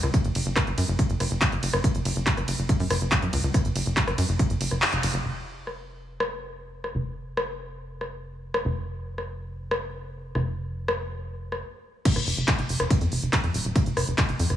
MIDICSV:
0, 0, Header, 1, 3, 480
1, 0, Start_track
1, 0, Tempo, 425532
1, 157, Time_signature, 4, 2, 24, 8
1, 16430, End_track
2, 0, Start_track
2, 0, Title_t, "Analog synth bass"
2, 0, Program_c, 0, 38
2, 37, Note_on_c, 0, 37, 99
2, 113, Note_off_c, 0, 37, 0
2, 277, Note_on_c, 0, 30, 87
2, 353, Note_off_c, 0, 30, 0
2, 396, Note_on_c, 0, 30, 104
2, 473, Note_off_c, 0, 30, 0
2, 516, Note_on_c, 0, 30, 96
2, 593, Note_off_c, 0, 30, 0
2, 756, Note_on_c, 0, 30, 92
2, 833, Note_off_c, 0, 30, 0
2, 876, Note_on_c, 0, 42, 102
2, 953, Note_off_c, 0, 42, 0
2, 996, Note_on_c, 0, 30, 93
2, 1073, Note_off_c, 0, 30, 0
2, 1236, Note_on_c, 0, 30, 91
2, 1313, Note_off_c, 0, 30, 0
2, 1356, Note_on_c, 0, 30, 106
2, 1433, Note_off_c, 0, 30, 0
2, 1476, Note_on_c, 0, 30, 93
2, 1553, Note_off_c, 0, 30, 0
2, 1716, Note_on_c, 0, 30, 86
2, 1793, Note_off_c, 0, 30, 0
2, 1836, Note_on_c, 0, 30, 108
2, 1913, Note_off_c, 0, 30, 0
2, 1956, Note_on_c, 0, 30, 95
2, 2033, Note_off_c, 0, 30, 0
2, 2196, Note_on_c, 0, 30, 89
2, 2273, Note_off_c, 0, 30, 0
2, 2316, Note_on_c, 0, 30, 106
2, 2393, Note_off_c, 0, 30, 0
2, 2436, Note_on_c, 0, 30, 97
2, 2513, Note_off_c, 0, 30, 0
2, 2676, Note_on_c, 0, 30, 91
2, 2753, Note_off_c, 0, 30, 0
2, 2796, Note_on_c, 0, 30, 102
2, 2873, Note_off_c, 0, 30, 0
2, 2916, Note_on_c, 0, 30, 92
2, 2993, Note_off_c, 0, 30, 0
2, 3156, Note_on_c, 0, 42, 96
2, 3233, Note_off_c, 0, 42, 0
2, 3276, Note_on_c, 0, 30, 101
2, 3353, Note_off_c, 0, 30, 0
2, 3396, Note_on_c, 0, 30, 95
2, 3473, Note_off_c, 0, 30, 0
2, 3636, Note_on_c, 0, 42, 84
2, 3713, Note_off_c, 0, 42, 0
2, 3756, Note_on_c, 0, 37, 109
2, 3833, Note_off_c, 0, 37, 0
2, 3876, Note_on_c, 0, 37, 96
2, 3953, Note_off_c, 0, 37, 0
2, 4116, Note_on_c, 0, 30, 87
2, 4193, Note_off_c, 0, 30, 0
2, 4236, Note_on_c, 0, 30, 105
2, 4313, Note_off_c, 0, 30, 0
2, 4356, Note_on_c, 0, 30, 96
2, 4433, Note_off_c, 0, 30, 0
2, 4596, Note_on_c, 0, 30, 92
2, 4673, Note_off_c, 0, 30, 0
2, 4716, Note_on_c, 0, 42, 107
2, 4793, Note_off_c, 0, 42, 0
2, 4836, Note_on_c, 0, 30, 94
2, 4913, Note_off_c, 0, 30, 0
2, 5076, Note_on_c, 0, 30, 90
2, 5153, Note_off_c, 0, 30, 0
2, 5196, Note_on_c, 0, 30, 101
2, 5273, Note_off_c, 0, 30, 0
2, 5316, Note_on_c, 0, 30, 92
2, 5393, Note_off_c, 0, 30, 0
2, 5556, Note_on_c, 0, 30, 83
2, 5633, Note_off_c, 0, 30, 0
2, 5677, Note_on_c, 0, 30, 108
2, 5753, Note_off_c, 0, 30, 0
2, 5796, Note_on_c, 0, 30, 97
2, 5873, Note_off_c, 0, 30, 0
2, 5916, Note_on_c, 0, 29, 83
2, 7813, Note_off_c, 0, 29, 0
2, 7837, Note_on_c, 0, 29, 82
2, 9733, Note_off_c, 0, 29, 0
2, 9757, Note_on_c, 0, 29, 82
2, 11653, Note_off_c, 0, 29, 0
2, 11676, Note_on_c, 0, 29, 88
2, 13116, Note_off_c, 0, 29, 0
2, 13716, Note_on_c, 0, 29, 84
2, 13793, Note_off_c, 0, 29, 0
2, 13837, Note_on_c, 0, 29, 100
2, 13913, Note_off_c, 0, 29, 0
2, 13956, Note_on_c, 0, 29, 93
2, 14033, Note_off_c, 0, 29, 0
2, 14196, Note_on_c, 0, 29, 91
2, 14273, Note_off_c, 0, 29, 0
2, 14316, Note_on_c, 0, 29, 102
2, 14393, Note_off_c, 0, 29, 0
2, 14436, Note_on_c, 0, 29, 91
2, 14513, Note_off_c, 0, 29, 0
2, 14676, Note_on_c, 0, 41, 91
2, 14753, Note_off_c, 0, 41, 0
2, 14796, Note_on_c, 0, 29, 102
2, 14873, Note_off_c, 0, 29, 0
2, 14916, Note_on_c, 0, 29, 90
2, 14993, Note_off_c, 0, 29, 0
2, 15156, Note_on_c, 0, 41, 84
2, 15233, Note_off_c, 0, 41, 0
2, 15276, Note_on_c, 0, 27, 103
2, 15353, Note_off_c, 0, 27, 0
2, 15397, Note_on_c, 0, 27, 94
2, 15473, Note_off_c, 0, 27, 0
2, 15637, Note_on_c, 0, 29, 89
2, 15713, Note_off_c, 0, 29, 0
2, 15756, Note_on_c, 0, 29, 107
2, 15833, Note_off_c, 0, 29, 0
2, 15876, Note_on_c, 0, 29, 93
2, 15953, Note_off_c, 0, 29, 0
2, 16117, Note_on_c, 0, 29, 89
2, 16193, Note_off_c, 0, 29, 0
2, 16237, Note_on_c, 0, 41, 103
2, 16313, Note_off_c, 0, 41, 0
2, 16357, Note_on_c, 0, 29, 90
2, 16430, Note_off_c, 0, 29, 0
2, 16430, End_track
3, 0, Start_track
3, 0, Title_t, "Drums"
3, 36, Note_on_c, 9, 37, 43
3, 36, Note_on_c, 9, 42, 38
3, 149, Note_off_c, 9, 37, 0
3, 149, Note_off_c, 9, 42, 0
3, 156, Note_on_c, 9, 36, 115
3, 156, Note_on_c, 9, 42, 93
3, 269, Note_off_c, 9, 36, 0
3, 269, Note_off_c, 9, 42, 0
3, 276, Note_on_c, 9, 42, 40
3, 389, Note_off_c, 9, 42, 0
3, 396, Note_on_c, 9, 46, 103
3, 396, Note_on_c, 9, 51, 84
3, 509, Note_off_c, 9, 46, 0
3, 509, Note_off_c, 9, 51, 0
3, 516, Note_on_c, 9, 42, 43
3, 629, Note_off_c, 9, 42, 0
3, 636, Note_on_c, 9, 36, 121
3, 636, Note_on_c, 9, 37, 85
3, 636, Note_on_c, 9, 39, 119
3, 636, Note_on_c, 9, 42, 94
3, 749, Note_off_c, 9, 36, 0
3, 749, Note_off_c, 9, 37, 0
3, 749, Note_off_c, 9, 39, 0
3, 749, Note_off_c, 9, 42, 0
3, 756, Note_on_c, 9, 42, 40
3, 869, Note_off_c, 9, 42, 0
3, 876, Note_on_c, 9, 46, 107
3, 876, Note_on_c, 9, 51, 84
3, 989, Note_off_c, 9, 46, 0
3, 989, Note_off_c, 9, 51, 0
3, 997, Note_on_c, 9, 42, 41
3, 1109, Note_off_c, 9, 42, 0
3, 1116, Note_on_c, 9, 36, 107
3, 1116, Note_on_c, 9, 42, 96
3, 1229, Note_off_c, 9, 36, 0
3, 1229, Note_off_c, 9, 42, 0
3, 1236, Note_on_c, 9, 42, 41
3, 1349, Note_off_c, 9, 42, 0
3, 1356, Note_on_c, 9, 37, 43
3, 1356, Note_on_c, 9, 46, 101
3, 1356, Note_on_c, 9, 51, 84
3, 1469, Note_off_c, 9, 37, 0
3, 1469, Note_off_c, 9, 46, 0
3, 1469, Note_off_c, 9, 51, 0
3, 1477, Note_on_c, 9, 42, 41
3, 1589, Note_off_c, 9, 42, 0
3, 1596, Note_on_c, 9, 36, 125
3, 1596, Note_on_c, 9, 39, 113
3, 1596, Note_on_c, 9, 42, 94
3, 1709, Note_off_c, 9, 36, 0
3, 1709, Note_off_c, 9, 39, 0
3, 1709, Note_off_c, 9, 42, 0
3, 1716, Note_on_c, 9, 42, 40
3, 1829, Note_off_c, 9, 42, 0
3, 1836, Note_on_c, 9, 46, 109
3, 1836, Note_on_c, 9, 51, 85
3, 1949, Note_off_c, 9, 46, 0
3, 1949, Note_off_c, 9, 51, 0
3, 1956, Note_on_c, 9, 37, 87
3, 1956, Note_on_c, 9, 42, 37
3, 2069, Note_off_c, 9, 37, 0
3, 2069, Note_off_c, 9, 42, 0
3, 2076, Note_on_c, 9, 36, 110
3, 2076, Note_on_c, 9, 42, 98
3, 2189, Note_off_c, 9, 36, 0
3, 2189, Note_off_c, 9, 42, 0
3, 2196, Note_on_c, 9, 42, 43
3, 2309, Note_off_c, 9, 42, 0
3, 2316, Note_on_c, 9, 46, 103
3, 2316, Note_on_c, 9, 51, 85
3, 2429, Note_off_c, 9, 46, 0
3, 2429, Note_off_c, 9, 51, 0
3, 2437, Note_on_c, 9, 42, 45
3, 2549, Note_off_c, 9, 42, 0
3, 2556, Note_on_c, 9, 36, 116
3, 2556, Note_on_c, 9, 39, 115
3, 2556, Note_on_c, 9, 42, 96
3, 2669, Note_off_c, 9, 36, 0
3, 2669, Note_off_c, 9, 39, 0
3, 2669, Note_off_c, 9, 42, 0
3, 2676, Note_on_c, 9, 37, 41
3, 2676, Note_on_c, 9, 42, 43
3, 2789, Note_off_c, 9, 37, 0
3, 2789, Note_off_c, 9, 42, 0
3, 2796, Note_on_c, 9, 46, 103
3, 2796, Note_on_c, 9, 51, 86
3, 2909, Note_off_c, 9, 46, 0
3, 2909, Note_off_c, 9, 51, 0
3, 2916, Note_on_c, 9, 42, 42
3, 3029, Note_off_c, 9, 42, 0
3, 3036, Note_on_c, 9, 36, 113
3, 3036, Note_on_c, 9, 42, 98
3, 3149, Note_off_c, 9, 36, 0
3, 3149, Note_off_c, 9, 42, 0
3, 3156, Note_on_c, 9, 46, 61
3, 3269, Note_off_c, 9, 46, 0
3, 3276, Note_on_c, 9, 37, 76
3, 3276, Note_on_c, 9, 46, 98
3, 3276, Note_on_c, 9, 51, 83
3, 3389, Note_off_c, 9, 37, 0
3, 3389, Note_off_c, 9, 46, 0
3, 3389, Note_off_c, 9, 51, 0
3, 3396, Note_on_c, 9, 42, 41
3, 3509, Note_off_c, 9, 42, 0
3, 3516, Note_on_c, 9, 36, 121
3, 3516, Note_on_c, 9, 39, 119
3, 3516, Note_on_c, 9, 42, 99
3, 3629, Note_off_c, 9, 36, 0
3, 3629, Note_off_c, 9, 39, 0
3, 3629, Note_off_c, 9, 42, 0
3, 3636, Note_on_c, 9, 42, 43
3, 3749, Note_off_c, 9, 42, 0
3, 3756, Note_on_c, 9, 46, 109
3, 3756, Note_on_c, 9, 51, 88
3, 3869, Note_off_c, 9, 46, 0
3, 3869, Note_off_c, 9, 51, 0
3, 3877, Note_on_c, 9, 42, 40
3, 3989, Note_off_c, 9, 42, 0
3, 3996, Note_on_c, 9, 36, 116
3, 3997, Note_on_c, 9, 37, 41
3, 3997, Note_on_c, 9, 42, 98
3, 4109, Note_off_c, 9, 36, 0
3, 4109, Note_off_c, 9, 37, 0
3, 4109, Note_off_c, 9, 42, 0
3, 4117, Note_on_c, 9, 42, 45
3, 4229, Note_off_c, 9, 42, 0
3, 4236, Note_on_c, 9, 46, 108
3, 4236, Note_on_c, 9, 51, 82
3, 4349, Note_off_c, 9, 46, 0
3, 4349, Note_off_c, 9, 51, 0
3, 4356, Note_on_c, 9, 42, 45
3, 4469, Note_off_c, 9, 42, 0
3, 4476, Note_on_c, 9, 36, 124
3, 4476, Note_on_c, 9, 39, 127
3, 4476, Note_on_c, 9, 42, 96
3, 4589, Note_off_c, 9, 36, 0
3, 4589, Note_off_c, 9, 39, 0
3, 4589, Note_off_c, 9, 42, 0
3, 4596, Note_on_c, 9, 37, 80
3, 4596, Note_on_c, 9, 42, 44
3, 4709, Note_off_c, 9, 37, 0
3, 4709, Note_off_c, 9, 42, 0
3, 4716, Note_on_c, 9, 46, 104
3, 4716, Note_on_c, 9, 51, 86
3, 4829, Note_off_c, 9, 46, 0
3, 4829, Note_off_c, 9, 51, 0
3, 4836, Note_on_c, 9, 42, 45
3, 4949, Note_off_c, 9, 42, 0
3, 4956, Note_on_c, 9, 36, 113
3, 4956, Note_on_c, 9, 42, 99
3, 5069, Note_off_c, 9, 36, 0
3, 5069, Note_off_c, 9, 42, 0
3, 5076, Note_on_c, 9, 42, 46
3, 5189, Note_off_c, 9, 42, 0
3, 5196, Note_on_c, 9, 46, 103
3, 5196, Note_on_c, 9, 51, 84
3, 5309, Note_off_c, 9, 46, 0
3, 5309, Note_off_c, 9, 51, 0
3, 5316, Note_on_c, 9, 37, 40
3, 5316, Note_on_c, 9, 42, 43
3, 5429, Note_off_c, 9, 37, 0
3, 5429, Note_off_c, 9, 42, 0
3, 5437, Note_on_c, 9, 39, 119
3, 5437, Note_on_c, 9, 46, 62
3, 5549, Note_off_c, 9, 39, 0
3, 5549, Note_off_c, 9, 46, 0
3, 5557, Note_on_c, 9, 42, 42
3, 5669, Note_off_c, 9, 42, 0
3, 5677, Note_on_c, 9, 46, 106
3, 5677, Note_on_c, 9, 51, 89
3, 5789, Note_off_c, 9, 46, 0
3, 5789, Note_off_c, 9, 51, 0
3, 6397, Note_on_c, 9, 37, 35
3, 6510, Note_off_c, 9, 37, 0
3, 6997, Note_on_c, 9, 37, 74
3, 7110, Note_off_c, 9, 37, 0
3, 7717, Note_on_c, 9, 37, 36
3, 7830, Note_off_c, 9, 37, 0
3, 8317, Note_on_c, 9, 37, 74
3, 8430, Note_off_c, 9, 37, 0
3, 9037, Note_on_c, 9, 37, 37
3, 9149, Note_off_c, 9, 37, 0
3, 9636, Note_on_c, 9, 37, 73
3, 9749, Note_off_c, 9, 37, 0
3, 10356, Note_on_c, 9, 37, 37
3, 10469, Note_off_c, 9, 37, 0
3, 10956, Note_on_c, 9, 37, 72
3, 11069, Note_off_c, 9, 37, 0
3, 11677, Note_on_c, 9, 37, 39
3, 11789, Note_off_c, 9, 37, 0
3, 12276, Note_on_c, 9, 37, 78
3, 12389, Note_off_c, 9, 37, 0
3, 12996, Note_on_c, 9, 37, 41
3, 13109, Note_off_c, 9, 37, 0
3, 13596, Note_on_c, 9, 36, 123
3, 13596, Note_on_c, 9, 42, 98
3, 13596, Note_on_c, 9, 49, 112
3, 13596, Note_on_c, 9, 51, 69
3, 13709, Note_off_c, 9, 36, 0
3, 13709, Note_off_c, 9, 42, 0
3, 13709, Note_off_c, 9, 49, 0
3, 13709, Note_off_c, 9, 51, 0
3, 13716, Note_on_c, 9, 37, 41
3, 13716, Note_on_c, 9, 42, 42
3, 13829, Note_off_c, 9, 37, 0
3, 13829, Note_off_c, 9, 42, 0
3, 13836, Note_on_c, 9, 46, 106
3, 13949, Note_off_c, 9, 46, 0
3, 13957, Note_on_c, 9, 42, 46
3, 14069, Note_off_c, 9, 42, 0
3, 14076, Note_on_c, 9, 36, 127
3, 14076, Note_on_c, 9, 39, 127
3, 14076, Note_on_c, 9, 42, 97
3, 14076, Note_on_c, 9, 51, 70
3, 14189, Note_off_c, 9, 36, 0
3, 14189, Note_off_c, 9, 39, 0
3, 14189, Note_off_c, 9, 42, 0
3, 14189, Note_off_c, 9, 51, 0
3, 14197, Note_on_c, 9, 42, 42
3, 14309, Note_off_c, 9, 42, 0
3, 14317, Note_on_c, 9, 46, 106
3, 14429, Note_off_c, 9, 46, 0
3, 14437, Note_on_c, 9, 37, 80
3, 14437, Note_on_c, 9, 42, 42
3, 14549, Note_off_c, 9, 37, 0
3, 14549, Note_off_c, 9, 42, 0
3, 14556, Note_on_c, 9, 36, 121
3, 14557, Note_on_c, 9, 42, 102
3, 14557, Note_on_c, 9, 51, 70
3, 14669, Note_off_c, 9, 36, 0
3, 14669, Note_off_c, 9, 42, 0
3, 14669, Note_off_c, 9, 51, 0
3, 14677, Note_on_c, 9, 42, 42
3, 14789, Note_off_c, 9, 42, 0
3, 14796, Note_on_c, 9, 46, 105
3, 14909, Note_off_c, 9, 46, 0
3, 14917, Note_on_c, 9, 42, 43
3, 15029, Note_off_c, 9, 42, 0
3, 15036, Note_on_c, 9, 36, 117
3, 15037, Note_on_c, 9, 37, 38
3, 15037, Note_on_c, 9, 39, 124
3, 15037, Note_on_c, 9, 42, 100
3, 15037, Note_on_c, 9, 51, 66
3, 15149, Note_off_c, 9, 36, 0
3, 15149, Note_off_c, 9, 37, 0
3, 15149, Note_off_c, 9, 39, 0
3, 15149, Note_off_c, 9, 42, 0
3, 15149, Note_off_c, 9, 51, 0
3, 15157, Note_on_c, 9, 42, 42
3, 15270, Note_off_c, 9, 42, 0
3, 15277, Note_on_c, 9, 46, 116
3, 15389, Note_off_c, 9, 46, 0
3, 15397, Note_on_c, 9, 42, 40
3, 15509, Note_off_c, 9, 42, 0
3, 15516, Note_on_c, 9, 36, 127
3, 15517, Note_on_c, 9, 42, 93
3, 15517, Note_on_c, 9, 51, 66
3, 15629, Note_off_c, 9, 36, 0
3, 15629, Note_off_c, 9, 42, 0
3, 15629, Note_off_c, 9, 51, 0
3, 15636, Note_on_c, 9, 42, 42
3, 15749, Note_off_c, 9, 42, 0
3, 15756, Note_on_c, 9, 37, 77
3, 15756, Note_on_c, 9, 46, 115
3, 15869, Note_off_c, 9, 37, 0
3, 15869, Note_off_c, 9, 46, 0
3, 15876, Note_on_c, 9, 42, 43
3, 15989, Note_off_c, 9, 42, 0
3, 15996, Note_on_c, 9, 36, 127
3, 15996, Note_on_c, 9, 39, 127
3, 15996, Note_on_c, 9, 42, 91
3, 15996, Note_on_c, 9, 51, 66
3, 16109, Note_off_c, 9, 36, 0
3, 16109, Note_off_c, 9, 39, 0
3, 16109, Note_off_c, 9, 42, 0
3, 16109, Note_off_c, 9, 51, 0
3, 16116, Note_on_c, 9, 42, 42
3, 16229, Note_off_c, 9, 42, 0
3, 16236, Note_on_c, 9, 46, 112
3, 16349, Note_off_c, 9, 46, 0
3, 16356, Note_on_c, 9, 37, 38
3, 16356, Note_on_c, 9, 42, 43
3, 16430, Note_off_c, 9, 37, 0
3, 16430, Note_off_c, 9, 42, 0
3, 16430, End_track
0, 0, End_of_file